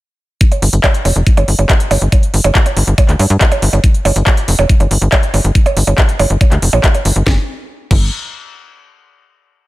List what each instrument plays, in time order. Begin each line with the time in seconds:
0.41 kick, closed hi-hat
0.52 closed hi-hat, percussion blips
0.62 analog synth bass G1, open hi-hat
0.73 analog synth bass G1, closed hi-hat
0.84 kick, clap, closed hi-hat, percussion blips
0.94 closed hi-hat
1.05 analog synth bass F1, open hi-hat, percussion blips
1.16 analog synth bass F1, closed hi-hat
1.27 kick, closed hi-hat
1.37 analog synth bass G1, closed hi-hat, percussion blips
1.48 analog synth bass G1, open hi-hat
1.59 analog synth bass G1, closed hi-hat, percussion blips
1.69 kick, clap, closed hi-hat
1.80 closed hi-hat
1.91 analog synth bass G1, open hi-hat, percussion blips
2.02 analog synth bass G1, closed hi-hat
2.12 kick, closed hi-hat, percussion blips
2.23 closed hi-hat
2.34 analog synth bass G1, open hi-hat
2.44 analog synth bass G1, closed hi-hat, percussion blips
2.55 kick, clap, closed hi-hat
2.66 closed hi-hat, percussion blips
2.77 analog synth bass G1, open hi-hat
2.87 analog synth bass G1, closed hi-hat
2.98 kick, closed hi-hat, percussion blips
3.09 analog synth bass D2, clap, closed hi-hat
3.19 analog synth bass G2, open hi-hat, percussion blips
3.30 analog synth bass G2, closed hi-hat
3.41 kick, clap, closed hi-hat
3.52 closed hi-hat, percussion blips
3.62 analog synth bass G1, open hi-hat
3.73 analog synth bass G1, closed hi-hat, percussion blips
3.84 kick, closed hi-hat
3.94 closed hi-hat
4.05 analog synth bass G1, open hi-hat, percussion blips
4.16 analog synth bass G1, closed hi-hat
4.27 kick, clap, closed hi-hat, percussion blips
4.37 closed hi-hat
4.48 analog synth bass F1, open hi-hat
4.59 analog synth bass F1, percussion blips
4.69 kick, closed hi-hat
4.80 analog synth bass G1, closed hi-hat, percussion blips
4.91 analog synth bass G1, open hi-hat
5.02 analog synth bass G1, closed hi-hat
5.12 kick, clap, closed hi-hat, percussion blips
5.23 closed hi-hat
5.34 analog synth bass G1, open hi-hat, percussion blips
5.44 analog synth bass G1, closed hi-hat
5.55 kick, closed hi-hat
5.66 closed hi-hat, percussion blips
5.77 analog synth bass G1, open hi-hat
5.87 analog synth bass G1, closed hi-hat, percussion blips
5.98 kick, clap, closed hi-hat
6.09 closed hi-hat
6.19 analog synth bass G1, open hi-hat, percussion blips
6.30 analog synth bass G1, closed hi-hat
6.41 kick, closed hi-hat, percussion blips
6.52 analog synth bass D2, clap, closed hi-hat
6.62 analog synth bass F1, open hi-hat
6.73 analog synth bass A#1, percussion blips
6.84 kick, clap, closed hi-hat
6.94 closed hi-hat, percussion blips
7.05 analog synth bass G1, open hi-hat
7.16 analog synth bass G1, closed hi-hat
7.27 analog synth bass G1, kick, snare
7.91 analog synth bass G1, kick, crash